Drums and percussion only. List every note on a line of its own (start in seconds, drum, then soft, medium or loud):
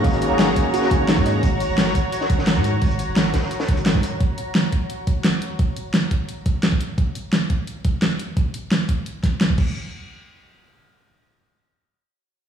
0.04 kick loud
0.04 closed hi-hat medium
0.04 open hi-hat medium
0.14 closed hi-hat soft
0.21 closed hi-hat medium
0.21 closed hi-hat loud
0.39 snare loud
0.39 closed hi-hat medium
0.56 kick medium
0.56 closed hi-hat loud
0.56 closed hi-hat medium
0.74 closed hi-hat medium
0.82 snare soft
0.91 kick loud
0.91 closed hi-hat medium
1.08 snare loud
1.08 closed hi-hat medium
1.17 kick medium
1.17 snare soft
1.26 closed hi-hat loud
1.26 closed hi-hat medium
1.43 kick loud
1.43 closed hi-hat medium
1.60 closed hi-hat medium
1.78 snare loud
1.78 closed hi-hat medium
1.86 snare soft
1.95 kick medium
1.95 closed hi-hat medium
2.12 closed hi-hat medium
2.21 snare medium
2.30 kick loud
2.30 closed hi-hat medium
2.39 snare medium
2.47 snare loud
2.47 closed hi-hat medium
2.64 closed hi-hat medium
2.82 kick loud
2.82 closed hi-hat medium
2.82 open hi-hat medium
2.91 closed hi-hat soft
2.99 closed hi-hat medium
3.16 snare loud
3.16 closed hi-hat medium
3.34 kick medium
3.34 snare loud
3.34 closed hi-hat medium
3.43 snare soft
3.51 closed hi-hat medium
3.60 snare loud
3.60 closed hi-hat medium
3.68 kick loud
3.68 snare soft
3.68 closed hi-hat medium
3.77 closed hi-hat medium
3.86 snare loud
3.86 closed hi-hat medium
3.95 kick medium
3.95 snare soft
4.03 closed hi-hat medium
4.20 kick loud
4.20 closed hi-hat medium
4.38 closed hi-hat medium
4.55 snare loud
4.55 closed hi-hat medium
4.72 kick medium
4.72 closed hi-hat medium
4.90 closed hi-hat medium
5.07 kick medium
5.07 closed hi-hat medium
5.24 snare loud
5.24 closed hi-hat medium
5.42 closed hi-hat medium
5.59 kick loud
5.59 closed hi-hat medium
5.77 closed hi-hat medium
5.94 snare loud
5.94 closed hi-hat medium
6.11 kick medium
6.11 closed hi-hat medium
6.29 closed hi-hat medium
6.46 kick medium
6.46 closed hi-hat medium
6.63 snare loud
6.63 closed hi-hat medium
6.72 kick medium
6.81 closed hi-hat medium
6.98 kick loud
6.98 closed hi-hat medium
7.15 closed hi-hat medium
7.33 snare loud
7.33 closed hi-hat medium
7.50 kick medium
7.50 closed hi-hat medium
7.67 closed hi-hat medium
7.85 kick loud
7.85 closed hi-hat medium
8.02 snare loud
8.02 closed hi-hat medium
8.19 closed hi-hat medium
8.37 kick loud
8.37 closed hi-hat medium
8.54 closed hi-hat medium
8.72 snare loud
8.72 closed hi-hat medium
8.89 kick medium
8.89 closed hi-hat medium
9.06 closed hi-hat medium
9.23 kick medium
9.23 snare soft
9.23 closed hi-hat medium
9.41 snare loud
9.41 closed hi-hat medium
9.50 kick medium
9.58 kick loud
9.58 crash medium